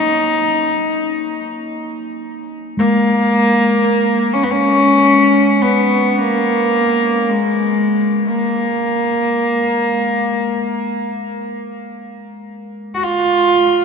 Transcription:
0.00 1.63 A#3 soft
0.00 1.38 D#4 medium
2.77 10.22 G#3 medium
2.77 4.35 A#3 medium
4.34 4.45 C#4 medium
4.43 4.52 B3 medium
4.51 5.63 C#4 medium
5.62 6.19 B3 medium
6.18 7.31 A#3 medium
7.29 8.31 G#3 medium
8.30 11.20 A#3 medium
12.95 13.05 F#4 medium
13.04 13.85 F4 medium

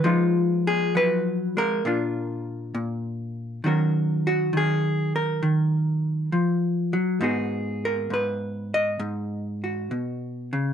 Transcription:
0.00 1.80 F3 medium
0.00 0.67 B4 loud
0.05 0.94 G#3 soft
0.05 1.81 D#4 soft
0.05 1.81 F4 medium
0.67 0.95 G#4 loud
0.95 1.56 F#3 medium
0.95 1.57 B4 loud
1.57 1.84 G#3 medium
1.57 3.64 A#4 loud
1.85 2.73 A#2 medium
1.85 3.61 A#3 medium
1.85 3.61 D4 medium
1.85 3.61 F4 medium
2.75 3.60 A#2 medium
3.64 4.52 D#3 medium
3.64 6.93 F#3 soft
3.64 7.20 C#4 soft
3.64 4.27 F#4 medium
3.64 4.57 A#4 soft
4.27 4.54 F#4 medium
4.53 5.41 D#3 medium
4.57 5.15 G#4 medium
5.16 6.33 A#4 medium
5.43 6.32 D#3 medium
6.32 6.94 F3 medium
6.93 7.21 F#3 medium
7.21 8.09 G#2 medium
7.21 10.73 B3 medium
7.21 10.73 D#4 soft
7.21 7.85 F#4 soft
7.21 8.12 G#4 medium
7.85 8.12 A#4 medium
8.10 8.98 G#2 medium
8.10 8.74 B4 medium
8.74 9.91 D#5 loud
8.99 9.90 G#2 medium
9.64 10.73 F#4 soft
9.91 10.52 B2 medium
10.53 10.73 C#3 medium

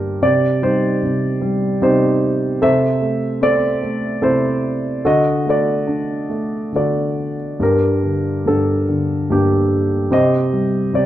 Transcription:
0.00 0.20 G2 soft
0.00 0.25 D3 soft
0.00 0.18 A#3 soft
0.00 0.18 D4 soft
0.00 0.22 G4 soft
0.00 0.25 A#4 medium
0.00 0.24 C5 medium
0.22 1.02 C3 soft
0.22 0.61 G4 soft
0.22 0.65 D5 medium
0.62 1.40 G3 soft
0.62 1.78 D#4 soft
0.62 1.78 G4 soft
0.62 1.81 C5 medium
1.03 1.80 C3 soft
1.41 2.58 G3 soft
1.82 2.59 C3 soft
1.82 2.58 D#4 medium
1.82 2.58 G4 soft
1.82 2.38 C5 medium
2.62 4.20 C3 medium
2.62 3.41 A4 medium
2.62 3.78 C5 medium
2.62 3.45 E5 medium
3.01 3.80 A3 soft
3.41 5.00 C4 soft
3.41 4.20 A4 medium
3.41 4.25 D5 medium
3.82 5.01 A3 soft
4.22 5.02 C3 soft
4.22 5.01 E4 soft
4.22 5.01 A4 medium
4.22 5.01 C5 medium
5.05 6.71 D3 soft
5.05 5.48 F#4 medium
5.05 5.48 A4 medium
5.05 5.49 D#5 medium
5.46 6.28 A3 soft
5.46 6.71 F#4 soft
5.46 6.71 A4 medium
5.50 6.75 D5 medium
5.87 7.55 D4 soft
6.29 7.55 A3 soft
6.72 7.56 D3 soft
6.72 7.57 F#4 soft
6.72 7.57 A4 soft
6.72 7.36 D5 medium
7.60 8.44 G2 medium
7.60 8.45 D4 soft
7.60 8.84 G4 soft
7.60 8.49 A#4 medium
8.03 8.87 D3 soft
8.46 9.29 G2 soft
8.46 9.29 D4 soft
8.46 9.33 A4 medium
8.89 10.08 D3 soft
9.30 10.09 G2 soft
9.30 10.08 A#3 soft
9.30 10.08 D4 soft
9.30 10.10 G4 medium
10.11 10.92 C3 medium
10.11 10.93 G4 medium
10.11 11.06 C5 medium
10.11 10.97 D#5 medium
10.53 11.06 G3 soft
10.93 11.06 C3 soft
10.93 11.06 G4 medium
10.93 11.06 D5 medium

